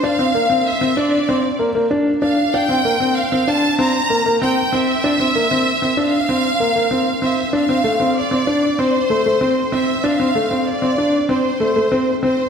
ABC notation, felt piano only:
X:1
M:4/4
L:1/16
Q:1/4=96
K:Bblyd
V:1 name="Felt piano"
D C B, C2 C D2 C2 B, B, D2 D2 | D C B, C2 C D2 C2 B, B, C2 C2 | D C B, C2 C D2 C2 B, B, C2 C2 | D C A, C2 C D2 C2 A, A, C2 C2 |
D C A, C2 C D2 C2 A, A, C2 C2 |]